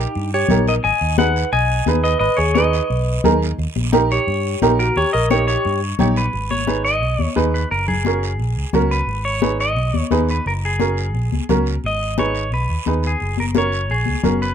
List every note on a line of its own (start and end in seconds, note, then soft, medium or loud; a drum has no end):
0.00 0.30 D#4 medium
0.00 0.30 G4 medium
0.15 0.43 G2 medium
0.15 high conga soft
0.15 long guiro medium
0.34 0.65 G4 medium
0.34 0.65 C#5 loud
0.49 0.78 A#1 medium
0.49 0.74 D#4 medium
0.49 0.74 G4 medium
0.49 0.74 A#4 medium
0.49 high conga medium
0.49 low conga medium
0.49 short guiro medium
0.68 0.76 A#4 medium
0.68 0.74 D#5 medium
0.68 short guiro medium
0.83 0.91 G#1 medium
0.83 1.16 D#5 medium
0.83 1.16 G#5 loud
0.83 high conga soft
0.83 long guiro medium
1.01 1.43 D#2 loud
1.18 1.43 D#4 medium
1.18 1.43 G#4 medium
1.18 1.50 B4 medium
1.18 1.43 B4 medium
1.18 1.50 F#5 medium
1.18 high conga medium
1.18 short guiro medium
1.36 short guiro medium
1.52 1.80 B1 loud
1.52 2.01 D#5 medium
1.52 2.03 G#5 loud
1.52 high conga soft
1.52 long guiro medium
1.86 2.14 D#2 medium
1.86 2.11 D#4 medium
1.86 2.11 G#4 medium
1.86 2.12 B4 medium
1.86 high conga medium
1.86 short guiro medium
2.04 2.20 B4 medium
2.04 2.18 D#5 medium
2.04 short guiro medium
2.19 2.28 G#1 loud
2.19 2.37 B4 medium
2.19 2.38 D#5 loud
2.19 high conga soft
2.19 long guiro medium
2.37 2.80 D#2 loud
2.37 2.54 G#4 medium
2.37 2.55 C#5 medium
2.55 2.80 D#4 medium
2.55 2.80 G#4 medium
2.55 3.38 B4 medium
2.55 2.81 B4 medium
2.55 3.37 D#5 medium
2.55 high conga medium
2.55 short guiro medium
2.73 short guiro medium
2.90 3.18 B1 medium
2.90 high conga soft
2.90 long guiro medium
3.24 3.52 D#2 medium
3.24 3.48 D#4 medium
3.24 3.48 G#4 medium
3.24 3.49 A#4 loud
3.24 high conga medium
3.24 low conga medium
3.24 short guiro medium
3.42 short guiro medium
3.58 3.65 D#2 loud
3.58 high conga soft
3.58 long guiro medium
3.76 4.17 A#1 loud
3.76 high conga medium
3.92 4.17 D#4 medium
3.92 4.17 G4 medium
3.92 4.17 A#4 loud
3.92 high conga medium
3.92 short guiro medium
4.11 4.76 G4 medium
4.11 4.82 C#5 medium
4.11 short guiro medium
4.27 4.55 G2 medium
4.27 high conga soft
4.27 long guiro medium
4.62 4.89 A#1 medium
4.62 4.86 D#4 medium
4.62 4.86 G4 medium
4.62 4.86 A#4 loud
4.62 high conga medium
4.62 short guiro medium
4.79 4.95 F#4 medium
4.79 4.97 A#4 medium
4.79 short guiro medium
4.96 5.03 D#2 medium
4.96 5.13 G4 medium
4.96 5.13 C#5 loud
4.96 high conga soft
4.96 long guiro medium
5.13 5.55 A#1 loud
5.13 5.29 A#4 medium
5.13 5.30 D#5 medium
5.30 5.55 D#4 medium
5.30 5.55 G4 medium
5.30 5.47 G4 medium
5.30 5.55 A#4 medium
5.30 5.46 C#5 medium
5.30 high conga medium
5.30 short guiro medium
5.48 5.80 G4 medium
5.48 5.79 C#5 medium
5.48 short guiro medium
5.65 5.93 G2 loud
5.65 high conga soft
5.65 long guiro medium
5.99 6.27 A#1 medium
5.99 6.23 D#4 medium
5.99 6.23 G4 medium
5.99 6.24 C#5 medium
5.99 high conga medium
5.99 low conga medium
5.99 short guiro medium
6.16 6.52 B4 medium
6.16 short guiro medium
6.33 7.02 G#1 medium
6.33 high conga soft
6.33 long guiro medium
6.51 6.83 C#5 medium
6.51 high conga medium
6.67 6.91 D#4 medium
6.67 6.91 G#4 medium
6.67 6.92 B4 medium
6.67 high conga medium
6.67 short guiro medium
6.85 7.33 D#5 medium
6.85 short guiro medium
7.02 7.16 B1 medium
7.02 high conga soft
7.02 long guiro medium
7.19 7.26 D#2 medium
7.19 high conga medium
7.36 7.64 D#2 medium
7.36 7.60 D#4 medium
7.36 7.60 G#4 medium
7.36 7.60 B4 medium
7.36 high conga medium
7.36 short guiro medium
7.54 7.70 B4 medium
7.54 short guiro medium
7.71 8.40 F#1 loud
7.71 7.87 A#4 medium
7.71 high conga soft
7.71 long guiro medium
7.88 8.91 G#4 medium
7.88 low conga medium
8.05 8.30 C#4 medium
8.05 8.30 F#4 medium
8.05 8.30 A#4 medium
8.05 high conga medium
8.05 short guiro medium
8.23 short guiro medium
8.39 8.53 A#1 medium
8.39 high conga soft
8.39 long guiro medium
8.57 8.63 C#2 medium
8.73 9.01 C#2 medium
8.73 8.98 C#4 medium
8.73 8.98 F#4 medium
8.73 8.98 A#4 medium
8.73 high conga medium
8.73 low conga medium
8.73 short guiro medium
8.91 9.23 B4 medium
8.91 short guiro medium
9.07 9.77 G#1 loud
9.07 high conga soft
9.07 long guiro medium
9.25 9.57 C#5 medium
9.41 9.66 D#4 medium
9.41 9.66 G#4 medium
9.41 9.66 B4 medium
9.41 high conga medium
9.41 short guiro medium
9.60 10.08 D#5 medium
9.60 short guiro medium
9.76 9.91 B1 medium
9.76 high conga soft
9.76 long guiro medium
9.94 10.01 D#2 medium
9.94 high conga medium
10.11 10.39 D#2 medium
10.11 10.35 D#4 medium
10.11 10.35 G#4 medium
10.11 10.35 B4 medium
10.11 high conga medium
10.11 short guiro medium
10.29 10.46 B4 medium
10.29 short guiro medium
10.46 11.14 F#1 loud
10.46 10.52 A#4 medium
10.46 high conga soft
10.46 long guiro medium
10.65 11.67 G#4 medium
10.79 11.04 C#4 medium
10.79 11.04 F#4 medium
10.79 11.04 A#4 medium
10.79 high conga medium
10.79 short guiro medium
10.97 short guiro medium
11.14 11.28 A#1 medium
11.14 high conga soft
11.14 long guiro medium
11.32 11.39 C#2 medium
11.32 high conga medium
11.49 11.77 C#2 medium
11.49 11.73 C#4 medium
11.49 11.74 F#4 medium
11.49 11.74 A#4 medium
11.49 high conga medium
11.49 low conga medium
11.49 short guiro medium
11.66 short guiro medium
11.84 12.53 G#1 loud
11.84 12.17 D#5 medium
11.84 high conga soft
11.84 long guiro medium
12.18 12.42 D#4 medium
12.18 12.42 G#4 medium
12.18 12.42 B4 medium
12.18 12.51 C#5 medium
12.18 high conga medium
12.18 short guiro medium
12.35 short guiro medium
12.52 12.66 B1 medium
12.52 13.06 B4 medium
12.52 high conga soft
12.52 long guiro medium
12.69 12.76 D#2 medium
12.86 13.14 D#2 medium
12.86 13.11 D#4 medium
12.86 13.11 G#4 medium
12.86 13.11 B4 medium
12.86 high conga medium
12.86 short guiro medium
13.03 13.38 G#4 medium
13.03 short guiro medium
13.20 13.91 F#1 medium
13.20 high conga soft
13.20 long guiro medium
13.37 13.45 A#4 medium
13.37 high conga medium
13.55 13.79 C#4 medium
13.55 13.79 F#4 medium
13.55 13.80 A#4 medium
13.55 13.92 C#5 medium
13.55 high conga medium
13.55 short guiro medium
13.72 short guiro medium
13.89 14.04 A#1 medium
13.89 14.42 G#4 medium
13.89 high conga soft
13.89 long guiro medium
14.06 14.14 C#2 medium
14.06 high conga medium
14.23 14.52 F#1 medium
14.23 14.48 C#4 medium
14.23 14.48 F#4 medium
14.23 14.48 A#4 medium
14.23 high conga medium
14.23 low conga medium
14.23 short guiro medium
14.42 14.54 B4 medium
14.42 short guiro medium